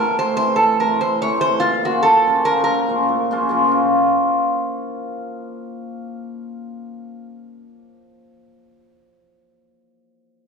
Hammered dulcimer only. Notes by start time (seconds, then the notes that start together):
Already playing: A2 E3
0.18 C3 E3 A3 C4 E4
0.36 C3 E3 A3 C4 E4
0.56 A2
0.81 C3 E3 A3 C4 E4
1.00 A2
1.22 C3 E3 A3 C4 E4
1.39 C3 E3 A3 C4 E4
1.60 A#2
1.83 C#3 F3 A#3 C#4 F4
2.04 A#2
2.27 C#3 F3 A#3 C#4 F4
2.45 C#3 F3 A#3 C#4 F4
2.64 A#2
2.88 C#3 F3 A#3 C#4 F4
3.09 A#2
3.31 C#3 F3 A#3 C#4 F4
3.49 C#3 F3 A#3 C#4 F4
3.64 F3 A#3
3.69 C#4 F4